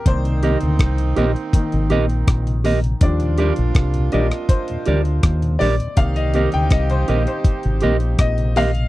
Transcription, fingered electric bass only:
\new Staff \with { instrumentName = "Fingered electric bass" } { \clef bass \time 4/4 \key c \minor \tempo 4 = 81 c,8. d,16 c,8 bes,,16 r8 aes,,16 bes,,8 bes,,4 | ees,8. bes,,16 c,8 bes,,16 r8. d,8 ees,8 bes,,16 r16 | c,8. d,16 c,8 bes,,16 r8 aes,,16 bes,,8 bes,,4 | }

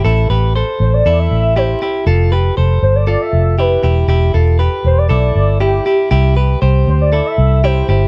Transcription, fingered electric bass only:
\new Staff \with { instrumentName = "Fingered electric bass" } { \clef bass \time 4/4 \key c \major \tempo 4 = 118 a,,8 a,,8. r16 a,,8 e,8 a,,4 r8 | f,,4 f,,8 g,,8. r16 f,,4 e,,8 | e,,8 e,,8. r16 e,,8 b,,8 g,,4 r8 | c,4 c,8 d,8. r16 c,4 g,,8 | }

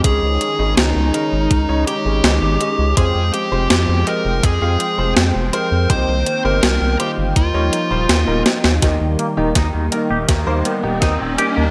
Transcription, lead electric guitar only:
\new Staff \with { instrumentName = "Lead electric guitar" } { \time 4/4 \key ees \mixolydian \tempo 4 = 82 aes'4 ees'4. g'4. | aes'8 g'8 g'8 bes'8 aes'4 r8 bes'8 | c''8. bes'8. g'8 f'4. r8 | r1 | }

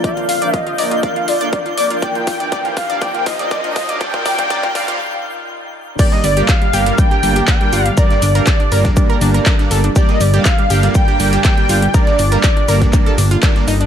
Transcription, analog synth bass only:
\new Staff \with { instrumentName = "Analog synth bass" } { \clef bass \time 4/4 \key g \minor \tempo 4 = 121 r1 | r1 | r1 | r8 g,,8 r8 g,,8 r8 g,,8 r8 g,,8 |
r8 g,,8 r8 g,,8 r8 g,,8 r8 g,,8 | r8 g,,8 r8 g,,8 r8 g,,8 r8 g,,8 | r8 g,,8 r8 g,,8 r8 g,,8 r8 g,,8 | }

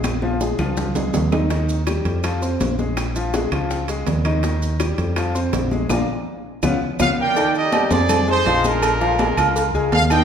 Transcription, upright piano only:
\new Staff \with { instrumentName = "Upright piano" } { \time 4/4 \key ees \major \tempo 4 = 164 <aes aes'>8 <f f'>8 <aes aes'>8 <f f'>4 <aes aes'>4 <ees ees'>8 | <ees ees'>4 <g g'>4 <f f'>8 <c' c''>4 <aes aes'>8~ | <aes aes'>8 <f f'>8 <aes aes'>8 <f f'>4 <aes aes'>4 <ees ees'>8 | <ees ees'>4 <g g'>4 <f f'>8 <c' c''>4 <aes aes'>8 |
<bes d' f'>8 r4. <ces' des' f'>8 r8 <ces' des' f'>8 r8 | <ees ees' d''>4 <g g' g''>8 <c' c'' c'''>4 <aes aes' aes''>8 <f f' f''>8 <aes aes' aes''>8~ | <aes aes' aes''>8 <f f' f''>8 <aes aes' aes''>8 <f' f'' f'''>4 <aes aes' aes''>4 <ees ees' ees''>8 | }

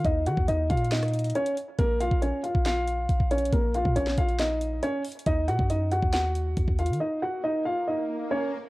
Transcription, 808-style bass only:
\new Staff \with { instrumentName = "808-style bass" } { \clef bass \time 4/4 \key ees \dorian \tempo 4 = 138 ees,8 ees16 ees,16 ees,8 bes,4. r4 | bes,,8. bes,,8 r8 bes,,4~ bes,,16 bes,,16 bes,,8. | bes,,8. bes,16 bes,,8 bes,,4. r4 | ees,8 bes,16 ges,4 ees,4~ ees,16 ees,16 ees,8 ees16 |
r1 | }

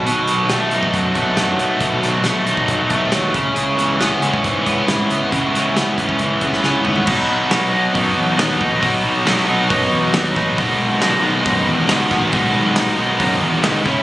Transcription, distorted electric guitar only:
\new Staff \with { instrumentName = "Distorted electric guitar" } { \clef bass \time 4/4 \key b \mixolydian \tempo 4 = 137 b,8 fis8 a8 dis'8 fis8 a8 fis8 a8 | b,8 fis8 a8 dis'8 fis8 a8 fis8 cis8 | cis8 e8 b8 cis'8 e8 b8 e8 b8 | cis8 e8 b8 cis'8 e8 b8 e8 b8 |
<b, fis b dis'>4 <b, fis b dis'>8 <b, fis b dis'>8 <b, fis b dis'>4 <b, fis b dis'>8 <b, fis b dis'>8 | <b, fis b dis'>4 <b, fis b dis'>8 <b, fis b dis'>8 <b, fis b dis'>4 <b, fis b dis'>8 <b, fis b dis'>8 | <b, dis gis b dis'>4 <b, dis gis b dis'>8 <b, dis gis b dis'>8 <b, dis gis b dis'>4 <b, dis gis b dis'>8 <b, dis gis b dis'>8 | <b, dis gis b dis'>4 <b, dis gis b dis'>8 <b, dis gis b dis'>8 <b, dis gis b dis'>4 <b, dis gis b dis'>8 <cis gis cis' e'>8 | }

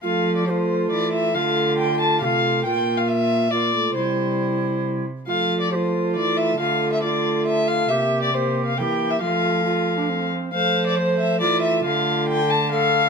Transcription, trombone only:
\new Staff \with { instrumentName = "Trombone" } { \time 3/4 \key f \major \tempo 4 = 137 a4 a2 | a2 a4 | bes2 bes8 a8 | g2~ g8 r8 |
a4 a2 | a4 a2 | bes4 bes4 bes4 | a2~ a8 r8 |
a4 a2 | a2 a4 | }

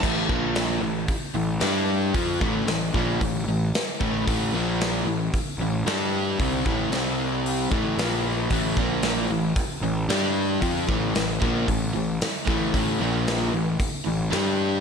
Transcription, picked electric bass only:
\new Staff \with { instrumentName = "Picked electric bass" } { \clef bass \time 4/4 \key a \minor \tempo 4 = 113 a,,8 bes,,4 a,,8 r8 a,,8 g,4 | f,8 a,,8 a,,8 bes,,8 a,,8 a,,8 r8 a,,8 | a,,8 bes,,4 a,,8 r8 a,,8 g,4 | c,8 a,,8 c,4. a,,8 bes,,4 |
a,,8 bes,,4 a,,8 r8 a,,8 g,4 | f,8 a,,8 a,,8 bes,,8 a,,8 a,,8 r8 a,,8 | a,,8 bes,,4 a,,8 r8 a,,8 g,4 | }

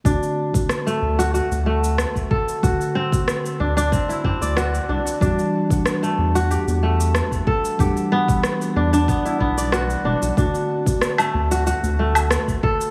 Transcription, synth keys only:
\new Staff \with { instrumentName = "Synth keys" } { \time 4/4 \key d \mixolydian \tempo 4 = 93 <d a c' fis'>8. <d a c' fis'>2.~ <d a c' fis'>16 | <d a c' fis'>8. <d a c' fis'>2.~ <d a c' fis'>16 | <e g d' fis'>8. <e g d' fis''>2.~ <e g d' fis''>16 | <e g d' fis''>8. <e g d' fis''>2.~ <e g d' fis''>16 |
<d a c' fis'>8. <d a c' fis'>2.~ <d a c' fis'>16 | }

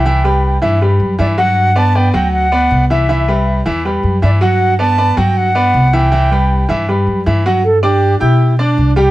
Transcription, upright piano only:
\new Staff \with { instrumentName = "Upright piano" } { \time 4/4 \key g \major \tempo 4 = 158 <e e' e''>8 <g g' b'>4 <e e' e''>8 <g g' b'>4 <e e' e''>8 <fis fis' fis''>8~ | <fis fis' fis''>8 <b b' d''>8 <b b' d''>8 <fis fis' fis''>4 <b b' d''>4 <e e' e''>8 | <e e' e''>8 <g g' b'>4 <e e' e''>8 <g g' b'>4 <e e' e''>8 <fis fis' fis''>8~ | <fis fis' fis''>8 <b b' d''>8 <b b' d''>8 <fis fis' fis''>4 <b b' d''>4 <e e' e''>8 |
<e e' e''>8 <g g' b'>4 <e e' e''>8 <g g' b'>4 <e e' e''>8 <fis fis' fis''>8 | r8 <d' d'' d'''>4 <g' g'' g'''>4 <d' d'' d'''>4 <g g' g''>8 | }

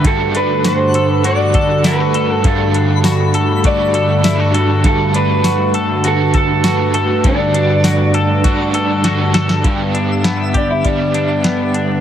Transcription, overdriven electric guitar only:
\new Staff \with { instrumentName = "Overdriven electric guitar" } { \time 4/4 \key d \mixolydian \tempo 4 = 100 <g, d g d' fis' a'>8 <g d' fis' a'>4. <g d' fis' a'>4 <g d' fis' a'>4 | <g, d g d' fis' a'>2 <g d' fis' a'>4 <g d' fis' a'>4 | <g, d g d' fis' a'>8 <g d' fis' a'>4. <g d' fis' a'>4 <g d' fis' a'>4 | <g, d g d' fis' a'>8 <g d' fis' a'>4. <g d' fis' a'>4 <g d' fis' a'>4 |
<g, d g b d' g'>2 <g b d' g'>8 <g b d' g'>4. | }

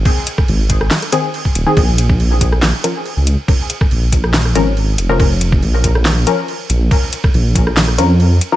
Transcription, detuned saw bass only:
\new Staff \with { instrumentName = "Detuned saw bass" } { \clef bass \time 4/4 \key bes \minor \tempo 4 = 140 r4 aes,,4 r4. ees,,16 r16 | bes,,2 bes,,16 r4 des,8 r16 | r4 bes,,4. aes,,4 f,,8~ | f,,4 bes,,4. r4 bes,,8 |
r4 bes,,4. f,4 r8 | }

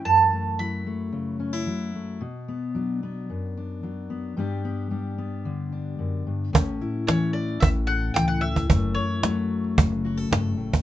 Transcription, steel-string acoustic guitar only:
\new Staff \with { instrumentName = "Steel-string acoustic guitar" } { \time 4/4 \key a \mixolydian \tempo 4 = 111 << { r8 a8 e'8 a4 cis'16 e'8. a8 | r8 b8 d'8 b4 d'4 b8 | <g b d' g'>8 b8 d'8 b4 d'4. | cis'8 e'8 cis'4. a'4 e'8 |
a8 e'8 a4. fis'16 a'4~ a'16 | } \\ { <fis, e>4 fis4 cis4 fis4 | b,4 fis4 fis,4 fis4 | g,4 g4 d4 fis,8 g,8 | a,4 e4 a,4 e4 |
fis,4 fis4 cis4 g,8 a,8 | } >> }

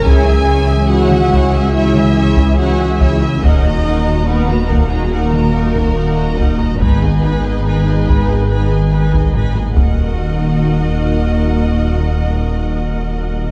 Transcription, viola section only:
\new Staff \with { instrumentName = "Viola section" } { \time 4/4 \key ees \phrygian \tempo 4 = 71 <fes' des''>16 <aes' fes''>16 <fes' des''>16 <aes' fes''>16 <fes' des''>16 <aes' fes''>16 <fes' des''>16 <aes' fes''>16 <fes' des''>16 <aes' fes''>16 <fes' des''>16 <aes' fes''>16 <fes' des''>16 <aes' fes''>16 <fes' des''>16 <aes' fes''>16 | <ees' bes'>16 ges'16 <ees' bes'>16 ges'16 <ees' bes'>16 ges'16 <ees' bes'>16 ges'16 <ees' bes'>16 ges'16 <ees' bes'>16 ges'16 <ees' bes'>16 ges'16 <ees' bes'>16 ges'16 | <ees' ces''>16 aes'16 <ees' ces''>16 aes'16 <ees' ces''>16 aes'16 <ees' ces''>16 aes'16 <ees' ces''>16 aes'16 <ees' ces''>16 aes'16 <ees' ces''>16 aes'16 <ges' bes'>8~ | <ges' bes'>1 | }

